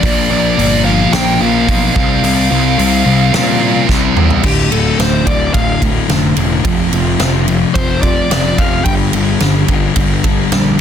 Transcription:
Already playing: D5
0.02 A#1 A#2 F3 A#3, kick, open hi-hat
0.30 A#1 A#2 F3 A#3 D5
0.57 G1 A#2 F3 A#3, open hi-hat
0.85 A#2 F3 A#3 F5
1.13 A#1 A#2 F3 A#3 G5, snare, open hi-hat
1.40 A#1 A#2 F3 A#3 F5
1.68 B1 A#2 F3 A#3, kick, open hi-hat
1.95 C2 C3 G3 C4 F5, kick
2.23 C2 C3 G3 C4, open hi-hat
2.50 C2 C3 G3 C4
2.78 C2 C3 G3 C4, open hi-hat
3.04 C2 C3 G3 C4
3.32 A#2 C3 G3 C4, snare, open hi-hat
3.60 C3 G3 C4
3.87 C2 C3 G3 C4, kick, snare
4.15 E2 C3 G3 C4, mid tom
4.30 floor tom
4.43 D1 D2 A2 D3 G4, kick, crash
4.71 D1 D2 A2 D3 A4, ride
4.98 D1 D2 A2 D3 C5, snare, ride
5.26 D1 D2 A2 D3 D5, kick, ride
5.53 D1 D2 A2 D3 F5, kick, ride
5.81 D2 A2 D3, kick, ride
6.09 F1 D2 A2 D3, snare, ride
6.36 E1 D2 A2 D3, ride
6.64 F1 F2 C3 F3, kick, ride
6.92 F1 F2 C3 F3, ride
7.19 F1 F2 C3 F3, snare, ride
7.48 F2 C3 F3, ride
7.74 F1 F2 C3 F3 C5, kick, ride
8.02 F2 C3 F3 D5, kick, ride
8.30 F1 F2 C3 F3 D5, snare, ride
8.58 F1 F2 C3 F3 F5, kick, ride
8.85 G1 G2 D3 G3 G5, kick, ride
9.13 G1 G2 D3 G3, ride
9.40 G1 G2 D3 G3, snare, ride
9.68 G1 G2 D3 G3, kick, ride
9.96 G1 G2 D3 G3, kick, ride
10.24 G2 D3 G3, kick, ride
10.51 A#1 G2 D3 G3, snare, ride

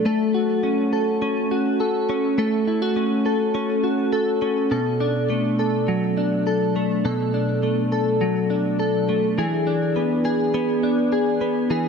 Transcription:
Already playing: A3 D4
0.05 A3 A4
0.34 F#4
0.63 C#4
0.93 A4
1.22 C#4
1.51 F#4
1.80 A4
2.09 C#4
2.38 A3 A4
2.67 E4
2.82 F#4
2.96 C#4
3.26 A4
3.55 C#4
3.84 F#4
4.13 A4
4.42 C#4
4.71 B2 A4
5.00 D4
5.30 A3
5.59 A4
5.88 F#3
6.17 D4
6.47 A4
6.76 A3
7.05 B2 A4
7.34 D4
7.63 A3
7.92 A4
8.21 F#3
8.50 D4
8.79 A4
9.09 A3
9.38 E3 G#4
9.67 D4
9.96 B3
10.25 G#4
10.54 B3
10.83 D4
11.12 G#4
11.41 B3
11.70 E3 G#4

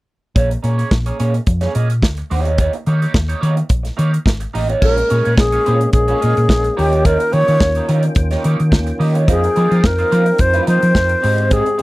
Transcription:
0.35 A#1 A#3 C#4 G#4 C#5, kick, closed hi-hat
0.51 muted clean electric guitar stroke, closed hi-hat
0.63 A#2 A#3 C#4 G#4 C#5, closed hi-hat
0.78 A#3 C#4 G#4 C#5, closed hi-hat
0.91 A#1, muted clean electric guitar stroke, kick, snare
1.06 A#3 C#4 G#4 C#5, closed hi-hat
1.19 A#2 A#3 C#4 G#4 C#5, closed hi-hat
1.34 muted clean electric guitar stroke, closed hi-hat
1.47 F2, muted clean electric guitar stroke, kick, closed hi-hat
1.61 A#3 C#4 G#4 C#5, snare, closed hi-hat
1.74 A#2 A#3 C#4 G#4 D#5, closed hi-hat
1.89 muted clean electric guitar stroke, closed hi-hat
2.02 D2, muted clean electric guitar stroke, kick, snare
2.17 muted clean electric guitar stroke, closed hi-hat
2.30 D#2 A#3 D#4 G4 C#5, open hi-hat
2.45 A#3 D#4 G4 C#5, closed hi-hat
2.58 A#3 D#4 G4 C#5, kick, closed hi-hat
2.73 muted clean electric guitar stroke, closed hi-hat
2.86 D#3 A#3 D#4 G4 C#5, closed hi-hat
3.02 A#3 D#4 G4 C#5, closed hi-hat
3.14 D#2, muted clean electric guitar stroke, kick, snare
3.29 A#3 D#4 G4 C#5, closed hi-hat
3.41 D#3 A#3 D#4 G4 C#5, closed hi-hat
3.56 muted clean electric guitar stroke, closed hi-hat
3.69 A#1, muted clean electric guitar stroke, kick, closed hi-hat
3.83 muted clean electric guitar stroke, snare, closed hi-hat
3.97 D#3 A#3 D#4 G4 C#5, closed hi-hat
4.12 muted clean electric guitar stroke, closed hi-hat
4.26 G#1, muted clean electric guitar stroke, kick, snare
4.40 muted clean electric guitar stroke, closed hi-hat
4.54 A1 A#3 D#4 G4 D#5, open hi-hat
4.69 A#3 D#4 G4 C#5, closed hi-hat
4.81 A#1 G#3 A#3 C#4 F4 G#4 A#4 C#5, kick, crash
4.97 muted clean electric guitar stroke, closed hi-hat
5.10 A#2 C#4 F4 G#4 C#5, closed hi-hat
5.25 A#2 C#4 F4 G#4 C#5, closed hi-hat
5.38 A#1 G#4, muted clean electric guitar stroke, kick, snare
5.52 C#4 F4 G#4 C#5, closed hi-hat
5.65 A#2 C#4 F4 G#4 C#5, closed hi-hat
5.81 muted clean electric guitar stroke, closed hi-hat
5.93 A#1 G#4, muted clean electric guitar stroke, kick, closed hi-hat
6.08 C#4 F4 G#4 C#5, closed hi-hat
6.21 A#2 C#4 F4 G#4 D#5, closed hi-hat
6.36 A#2, muted clean electric guitar stroke, closed hi-hat
6.48 A#1, muted clean electric guitar stroke, kick, snare
6.63 muted clean electric guitar stroke, closed hi-hat
6.77 D#2 D#3 A#3 C#4 D#4 F4 G4 C#5 G5, open hi-hat
6.92 A#3 D#4 G4 C#5, closed hi-hat
7.04 A#3 D#4 G4 A#4 C#5, kick, closed hi-hat
7.19 muted clean electric guitar stroke, closed hi-hat
7.31 D#3 A#3 D#4 G4 C#5, closed hi-hat
7.48 D#3 A#3 D#4 G4 C#5, closed hi-hat
7.60 D#2, kick, snare
7.75 A#3 D#4 G4 C#5, closed hi-hat
7.88 D#3 A#3 D#4 G4 C#5, closed hi-hat
8.03 muted clean electric guitar stroke, closed hi-hat
8.15 D#2, muted clean electric guitar stroke, kick, closed hi-hat
8.31 A#3 D#4 G4 C#5, snare, closed hi-hat
8.43 D#3 A#3 D#4 G4 C#5, closed hi-hat
8.59 D#3, muted clean electric guitar stroke, closed hi-hat
8.71 D#2, muted clean electric guitar stroke, kick, snare
8.87 muted clean electric guitar stroke, closed hi-hat
8.99 D#3 A#3 D#4 G4 D#5, open hi-hat
9.14 A#3 D#4 G4 C#5, closed hi-hat
9.27 F2 F3 A#3 C4 D#4 F4 G#4 A#4 C5, kick, closed hi-hat
9.43 muted clean electric guitar stroke, closed hi-hat
9.56 F3 A#3 D#4 F4 C5, closed hi-hat
9.71 F3 A#3 D#4 F4 C5, closed hi-hat
9.83 F2 A#4, muted clean electric guitar stroke, kick, snare
9.99 A#3 D#4 F4 C5, closed hi-hat
10.11 F3 A#3 D#4 F4 C5, closed hi-hat
10.26 muted clean electric guitar stroke, closed hi-hat
10.38 F2 C5, muted clean electric guitar stroke, kick, closed hi-hat
10.53 A#3 D#4 F4 C5, closed hi-hat
10.66 F3 A#3 D#4 F4 C5 D#5, closed hi-hat
10.81 F3, muted clean electric guitar stroke, closed hi-hat
10.94 F2, muted clean electric guitar stroke, kick, snare
11.09 muted clean electric guitar stroke, closed hi-hat
11.22 G#2 G#3 C4 D#4 G4 C5, open hi-hat
11.37 C4 D#4 G4 C5, closed hi-hat
11.50 C4 D#4 G4 G#4 C5, kick, closed hi-hat
11.65 muted clean electric guitar stroke, closed hi-hat
11.78 C4 D#4 G4 C5, closed hi-hat

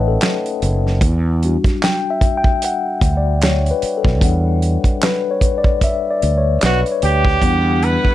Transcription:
Already playing: A1 A3 C#4 D#4 B4 C#5 D#5 E5 F#5 G5 A5
0.08 A4
0.21 snare, clap, closed hi-hat
0.46 closed hi-hat
0.62 F#1, closed hi-hat
0.87 snare
1.01 E2, kick, closed hi-hat
1.43 G3 D4 F#4, closed hi-hat
1.64 muted fretless electric bass stroke, kick, snare, closed hi-hat
1.83 G5, snare, clap, closed hi-hat
2.10 E5
2.21 kick, closed hi-hat
2.38 G5
2.44 kick
2.62 F#5, closed hi-hat
3.01 D2, kick, closed hi-hat
3.17 D5
3.42 C#5, snare, clap, closed hi-hat
3.66 closed hi-hat
3.71 B4
3.82 muted fretless electric bass stroke, closed hi-hat
3.97 A4
4.05 B1, kick, snare
4.21 E2 G3 D4 F#5, kick, closed hi-hat
4.62 closed hi-hat
4.84 muted fretless electric bass stroke, kick, closed hi-hat
5.02 B4, snare, clap, closed hi-hat
5.31 C#5
5.41 kick, closed hi-hat
5.58 D5
5.64 kick
5.81 E5, kick, closed hi-hat
6.11 D5
6.22 D2, closed hi-hat
6.38 C#5
6.61 B1 F#4 B4, snare, clap, closed hi-hat
6.86 closed hi-hat
6.92 C#5
7.02 D2 G4, closed hi-hat
7.25 kick, snare
7.41 E2 D3 G3 B3 D4 E4 F#5, kick, closed hi-hat
7.46 F#5
7.83 B4, closed hi-hat
8.05 muted fretless electric bass stroke, kick, cross-stick

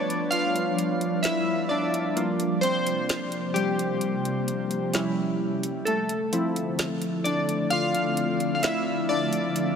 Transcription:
Already playing: F3 G3 A3 B3 D4 F4 B4 C#5 D5
0.10 closed hi-hat
0.31 F4 F5, closed hi-hat
0.56 closed hi-hat
0.79 closed hi-hat
1.01 closed hi-hat
1.23 E4 E5, snare, closed hi-hat
1.69 D4 D5
1.94 closed hi-hat
2.16 C3 A#3 D4 F4, closed hi-hat
2.40 closed hi-hat
2.61 C4 C5, closed hi-hat
2.87 closed hi-hat
3.09 snare, closed hi-hat
3.32 closed hi-hat
3.54 G3 G4, closed hi-hat
3.79 closed hi-hat
4.01 closed hi-hat
4.25 closed hi-hat
4.48 closed hi-hat
4.71 closed hi-hat
4.94 G3 A3 C#4 E4, snare, closed hi-hat
5.63 closed hi-hat
5.85 D3 F3 A3 C4 A4, closed hi-hat
6.09 closed hi-hat
6.33 F3 C4 E4, closed hi-hat
6.56 closed hi-hat
6.79 snare, closed hi-hat
7.02 closed hi-hat
7.24 D4 D5, closed hi-hat
7.49 closed hi-hat
7.70 F4 F5, closed hi-hat
7.95 closed hi-hat
8.17 closed hi-hat
8.40 closed hi-hat
8.55 F5
8.63 E4 E5, snare, closed hi-hat
9.09 D4 D5
9.33 closed hi-hat
9.56 closed hi-hat

